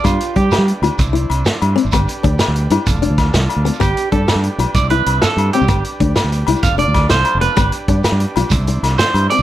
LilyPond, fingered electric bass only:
\new Staff \with { instrumentName = "Fingered electric bass" } { \clef bass \time 12/8 \key g \mixolydian \tempo 4. = 127 g,8 r8 g8 r16 g8 r16 d,16 r16 c,16 c,8. c,8 r8 g,8 r16 aes,,16 | g,,8 r8 d,8 r16 d,8. g,16 r16 f,,16 f,,8 d,8. c,8 r16 d,8 r16 | g,,8 r8 g,8 r16 g,8 r16 b,,16 r16 c,16 c,8. c,8 r8 g,8 r16 c,16 | g,,8 r8 d,8 r16 d,8. c,16 r16 f,,16 f,,8 d,8. c,8 r16 f,,8 r16 |
g,,8 r8 g,8 r16 g,8 r16 b,,16 r16 c,16 c,8. c,8 r8 g,8 r16 c,16 | }